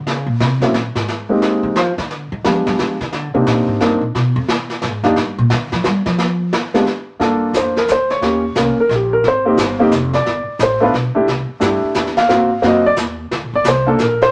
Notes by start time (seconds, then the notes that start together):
0.06 C#3, brush sweep, snare
0.26 A#2
0.40 C3, snare
0.60 G#2 F#3 A#3 C4 C#4 E4, snare
0.74 A#2, snare
0.95 G#2, snare
1.08 brush sweep, snare
1.29 G#3 A#3 C4 D#4 G4
1.42 snare
1.63 E3
1.76 F3, snare
1.98 D#3, snare
2.11 D3, brush sweep, snare
2.32 D#3
2.44 F3 G#3 B3 D4 F4 G4, snare
2.67 F#3, snare
2.79 F3, snare
3.01 D#3, snare
3.13 D3, brush sweep, snare
3.34 C3 A#3 C4 D4 D#4 G4
3.47 A#2, snare
3.68 G#2
3.80 G2 A#3 C4 D4 D#4 A#4, snare
4.01 A#2
4.15 B2, brush sweep, snare
4.36 F2
4.48 snare
4.70 snare
4.82 G#2, snare
5.03 F2 A#3 D4 D#4 F4 G4, snare
5.16 G2, brush sweep, snare
5.38 A#2
5.50 D3, snare
5.72 F3, snare
5.84 G3, snare
6.06 F3, snare
6.18 brush sweep, snare
6.53 snare
6.74 G#3 B3 D4 F4 G4, snare
6.87 snare
7.20 G2 A#3 D4 F4 A4, brush sweep, snare
7.53 F2 C5, snare, hi-hat pedal
7.76 A#4, snare
7.88 D2, snare, hi-hat pedal
7.92 C5
8.10 C#5, snare
8.21 D#2 A#3 C#4 F4 G4, brush sweep, snare
8.55 C2 A#3 C#4 F4 A#4, snare, hi-hat pedal
8.77 A#4, muted upright bass stroke
8.89 A#1, snare
8.95 G4
9.13 A#4
9.24 G#1, brush sweep, snare
9.28 C5
9.45 A#3 C4 D#4 G4
9.57 G1, snare, hi-hat pedal
9.79 A#3 C4 D#4 G4
9.91 F1, snare, hi-hat pedal
10.13 D5, snare
10.25 G1, brush sweep, snare
10.47 muted upright bass stroke
10.59 A1 C5, snare, hi-hat pedal
10.80 A3 B3 D4 F4 B4
10.94 B1, snare
11.15 A3 D4 E4 G4, muted upright bass stroke
11.27 C2, brush sweep, snare
11.49 muted upright bass stroke
11.60 G2 A3 D4 E4 G4, snare, hi-hat pedal
11.83 muted upright bass stroke
11.94 E2, snare, hi-hat pedal
12.06 snare
12.17 F5, snare
12.28 G#2 A#3 C4 F4 F#4, brush sweep, snare
12.62 F#2 A#3 C4 F4 F#4, snare
12.67 D#5
12.86 D5
12.96 D#2, snare, hi-hat pedal
13.31 D2, brush sweep, snare
13.43 A#1
13.53 G1 D5
13.64 C2, snare, hi-hat pedal
13.68 C5
13.86 A#3 D4 F4 A4
13.99 A#1 A#4, snare, hi-hat pedal
14.22 C5, snare